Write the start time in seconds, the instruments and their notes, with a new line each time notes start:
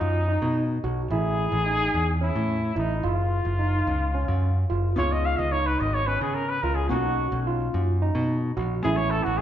Already playing: trumpet D#4
0.01 picked electric bass F#2
0.29 tine electric piano D#4
0.42 picked electric bass B2
0.84 picked electric bass B1, tine electric piano F#4
1.10 picked electric bass A1, tine electric piano E4, trumpet G#4
1.52 picked electric bass A1
1.66 tine electric piano D#4
1.94 picked electric bass E2
2.21 tine electric piano C#4, trumpet E4
2.35 picked electric bass A2
2.76 picked electric bass A1, trumpet D#4, tine electric piano E4
3.03 picked electric bass F#1, tine electric piano F4, trumpet F4
3.45 picked electric bass F#1
3.59 tine electric piano D#4
3.87 picked electric bass C#2
4.15 tine electric piano C#4
4.28 picked electric bass F#2
4.70 picked electric bass F#1, tine electric piano F4
4.96 picked electric bass C#2, hollow-body jazz guitar B3 D#4 F4 G#4, tine electric piano F4, trumpet C#5
5.12 trumpet D#5
5.25 trumpet F5
5.38 picked electric bass C#2, trumpet D#5
5.52 tine electric piano D#4, trumpet C#5
5.67 trumpet B4
5.80 picked electric bass G#1, trumpet D#5
5.94 trumpet C#5
6.07 tine electric piano C#4, trumpet B4
6.21 picked electric bass C#3, trumpet G#4
6.35 trumpet A#4
6.49 trumpet B4
6.63 picked electric bass C#2, tine electric piano F4, trumpet A#4
6.75 trumpet G#4
6.89 picked electric bass B1, hollow-body jazz guitar A#3 C#4 D#4 F#4, trumpet F#4, tine electric piano F#4
7.32 picked electric bass B1
7.47 tine electric piano F4
7.74 picked electric bass F#2
8.02 tine electric piano D#4
8.15 picked electric bass B2
8.57 picked electric bass A#1, tine electric piano F#4
8.83 picked electric bass A1, hollow-body jazz guitar G#3 B3 C#4 E4, tine electric piano E4, trumpet G#4
8.97 trumpet C#5
9.11 trumpet A4
9.24 picked electric bass A1, trumpet F#4
9.38 trumpet G#4